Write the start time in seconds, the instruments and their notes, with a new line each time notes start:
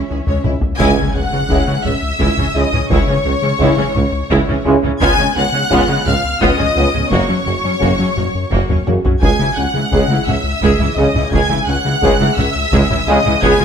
Already playing: cello section C#4, violin section E5
0.10 double bass section C#2, analog synth bass C#2, tuba C#2, synth pluck E3, viola section G#3, violin section G#4
0.27 double bass section C#2, analog synth bass C#2, synth pluck C#3, viola section G#3, violin section C#5, taiko low-mid
0.44 double bass section C#2, tuba C#2, analog synth bass C#2, trombone section C#3 G#3, viola section G#3, synth pluck C#4, french horn section C#4 E4, violin section E4, taiko mid
0.62 analog synth bass C#2, taiko low
0.79 double bass section C#2, tuba C#2, analog synth bass C#2, cello section C#3, synth pluck C#3, viola section G#3 E4, violin section G#5 G#6, taiko, impact
0.97 analog synth bass C#3, cello section C#3, viola section E3 C#4, synth pluck G#3
1.14 double bass section C#2, analog synth bass C#2, tuba C#2, viola section C#3 G#3, cello section C#3, synth pluck C#4, violin section F#5 F#6
1.33 cello section C#3, analog synth bass C#3, viola section E3 C#4, synth pluck G#3
1.49 analog synth bass C#2, tuba C#2, double bass section C#2, cello section C#3, synth pluck C#3, trombone section C#3 G#3, viola section G#3 E4, french horn section C#4 E4, taiko
1.67 analog synth bass C#3, cello section C#3, viola section E3 C#4, synth pluck G#3
1.84 analog synth bass C#2, tuba C#2, double bass section C#2, viola section C#3 G#3, cello section C#3, synth pluck C#4, violin section E5 E6, taiko mid
2.02 analog synth bass C#2
2.19 analog synth bass C#2, tuba C#2, double bass section C#2, cello section C#3, synth pluck C#3, viola section G#3 E4, taiko
2.37 analog synth bass C#2, cello section C#3, viola section E3 C#4, synth pluck E3, taiko mid
2.54 analog synth bass C#2, tuba C#2, double bass section C#2, trombone section C#3 G#3, viola section C#3 G#3, cello section C#3, french horn section C#4 E4, synth pluck C#4, violin section D#5 D#6
2.72 analog synth bass C#2, cello section C#3, viola section E3 C#4, synth pluck C#4, taiko mid
2.90 analog synth bass C#2, tuba C#2, double bass section C#2, synth pluck C#3, cello section C#3, viola section G#3 E4, violin section C#5 C#6, taiko
3.07 analog synth bass C#3, cello section C#3, viola section E3 C#4, synth pluck G#3
3.25 analog synth bass C#2, tuba C#2, double bass section C#2, viola section C#3 G#3, cello section C#3, synth pluck C#4
3.42 analog synth bass C#3, cello section C#3, viola section E3 C#4, synth pluck G#3
3.59 analog synth bass C#2, tuba C#2, double bass section C#2, trombone section C#3 G#3, synth pluck C#3, cello section C#3, viola section G#3 E4, french horn section C#4 E4, taiko
3.77 analog synth bass C#3, cello section C#3, viola section E3 C#4, synth pluck G#3
3.95 analog synth bass C#2, tuba C#2, double bass section C#2, viola section C#3 G#3, cello section C#3, synth pluck C#4, taiko mid
4.12 analog synth bass C#2
4.30 analog synth bass C#2, tuba C#2, double bass section C#2, synth pluck C#3, cello section C#3, viola section G#3 E4, taiko
4.47 analog synth bass C#2, cello section C#3, viola section E3 C#4, synth pluck E3, taiko mid
4.65 analog synth bass C#2, double bass section C#2, tuba C#2, trombone section C#3 G#3, viola section C#3 G#3, cello section C#3, french horn section C#4 E4, synth pluck C#4
4.83 analog synth bass C#2, cello section C#3, viola section E3 C#4, synth pluck C#4, taiko mid
5.00 analog synth bass C#2, double bass section C#2, tuba C#2, cello section C#3, synth pluck C#3, viola section B3 F4, violin section G#5 G#6, taiko
5.17 analog synth bass C#3, cello section C#3, viola section G#3 C#4, synth pluck G#3
5.36 analog synth bass C#2, double bass section C#2, tuba C#2, cello section C#3, viola section F3 B3, synth pluck B3, violin section F#5 F#6
5.52 analog synth bass C#3, cello section C#3, viola section G#3 C#4, synth pluck G#3
5.70 analog synth bass C#2, double bass section C#2, tuba C#2, trombone section C#3 B3, cello section C#3, synth pluck C#3, viola section B3 F4, french horn section C#4 F4, taiko
5.88 analog synth bass C#3, cello section C#3, viola section G#3 C#4, synth pluck G#3
6.06 analog synth bass C#2, tuba C#2, double bass section C#2, cello section C#3, viola section F3 B3, synth pluck B3, violin section F5 F6, taiko mid
6.24 analog synth bass C#2
6.41 analog synth bass C#2, tuba C#2, double bass section C#2, cello section C#3, synth pluck C#3, viola section B3 F4, violin section D#5 D#6, taiko
6.58 analog synth bass C#2, cello section C#3, synth pluck F3, viola section G#3 C#4, taiko mid
6.76 analog synth bass C#2, double bass section C#2, tuba C#2, trombone section C#3 B3, cello section C#3, viola section F3 B3, synth pluck B3, french horn section C#4 F4
6.94 analog synth bass C#2, cello section C#3, viola section G#3 C#4, synth pluck B3, taiko mid
7.10 double bass section F#1, tuba F#1, analog synth bass F#2, cello section F#2, synth pluck F#3, viola section A#3 F#4, violin section C#5 C#6, taiko
7.29 cello section F#2, analog synth bass F#3, viola section F#3 C#4, synth pluck C#4
7.46 double bass section F#1, tuba F#1, cello section F#2, analog synth bass F#2, viola section C#3 A#3, synth pluck F#4
7.64 cello section F#2, viola section F#3 C#4, analog synth bass F#3, synth pluck C#4
7.79 tuba F#1, double bass section F#1, cello section F#2, analog synth bass F#2, trombone section C#3 A#3, synth pluck F#3, viola section A#3 F#4, french horn section C#4 F#4, taiko
7.99 cello section F#2, analog synth bass F#3, viola section F#3 C#4, synth pluck C#4
8.17 tuba F#1, double bass section F#1, cello section F#2, analog synth bass F#2, viola section C#3 A#3, synth pluck F#4, taiko mid
8.35 analog synth bass F#2
8.51 tuba F#1, double bass section F#1, cello section F#2, analog synth bass F#2, synth pluck F#3, viola section A#3 F#4, taiko
8.69 analog synth bass F#2, cello section F#2, viola section F#3 C#4, synth pluck A#3, taiko low-mid
8.86 tuba F#1, double bass section F#1, analog synth bass F#2, cello section F#2, trombone section C#3 A#3, viola section C#3 A#3, french horn section C#4 F#4, synth pluck F#4, taiko high
9.05 cello section F#2, analog synth bass F#2, viola section F#3 C#4, synth pluck F#4, taiko low
9.21 double bass section C#2, tuba C#2, cello section C#2, analog synth bass C#2, synth pluck C#3, viola section G#3 G#4, violin section G#5 G#6, taiko
9.39 cello section C#2, analog synth bass C#3, viola section E3 E4, synth pluck G#3
9.57 analog synth bass C#2, cello section C#2, double bass section C#2, tuba C#2, viola section C#3 C#4, synth pluck C#4, violin section F#5 F#6
9.74 cello section C#2, analog synth bass C#3, viola section E3 E4, synth pluck G#3
9.92 analog synth bass C#2, cello section C#2, tuba C#2, double bass section C#2, trombone section C#3 G#3, synth pluck C#3, viola section G#3 G#4, french horn section C#4 G#4, taiko
10.08 cello section C#2, analog synth bass C#3, viola section E3 E4, synth pluck G#3
10.27 analog synth bass C#2, double bass section C#2, cello section C#2, tuba C#2, viola section C#3 C#4, synth pluck C#4, violin section E5 E6, taiko mid
10.44 analog synth bass C#2
10.61 analog synth bass C#2, double bass section C#2, cello section C#2, tuba C#2, synth pluck C#3, viola section G#3 G#4, taiko
10.79 analog synth bass C#2, cello section C#2, viola section E3 E4, synth pluck E3, taiko mid
10.96 analog synth bass C#2, cello section C#2, tuba C#2, double bass section C#2, trombone section C#3 G#3, viola section C#3 C#4, french horn section C#4 G#4, synth pluck C#4, violin section D#5 D#6
11.14 analog synth bass C#2, cello section C#2, viola section E3 E4, synth pluck C#4, taiko mid
11.31 analog synth bass C#2, double bass section C#2, tuba C#2, cello section C#2, synth pluck C#3, viola section G#3 G#4, violin section G#5 G#6, taiko
11.50 cello section C#2, analog synth bass C#3, viola section E3 E4, synth pluck G#3
11.67 analog synth bass C#2, tuba C#2, cello section C#2, double bass section C#2, viola section C#3 C#4, synth pluck C#4, violin section F#5 F#6
11.85 cello section C#2, analog synth bass C#3, viola section E3 E4, synth pluck G#3
12.02 analog synth bass C#2, cello section C#2, tuba C#2, double bass section C#2, trombone section C#3 G#3, synth pluck C#3, viola section G#3 G#4, french horn section C#4 G#4, taiko
12.21 cello section C#2, analog synth bass C#3, viola section E3 E4, synth pluck G#3
12.37 analog synth bass C#2, cello section C#2, double bass section C#2, tuba C#2, viola section C#3 C#4, synth pluck C#4, violin section E5 E6, taiko mid
12.55 analog synth bass C#2
12.72 analog synth bass C#2, cello section C#2, double bass section C#2, tuba C#2, synth pluck C#3, viola section G#3 G#4, taiko
12.90 analog synth bass C#2, cello section C#2, viola section E3 E4, synth pluck E3, taiko mid
13.07 analog synth bass C#2, cello section C#2, double bass section C#2, tuba C#2, trombone section C#3 G#3, viola section C#3 C#4, french horn section C#4 G#4, synth pluck C#4, violin section D#5 D#6
13.25 cello section C#2, analog synth bass C#2, viola section E3 E4, synth pluck C#4, taiko mid
13.42 analog synth bass C#2, cello section C#2, double bass section C#2, tuba C#2, synth pluck C#3, viola section B3 G#4, violin section G#5 G#6, taiko
13.60 cello section C#2, analog synth bass C#3, viola section G#3 F4, synth pluck G#3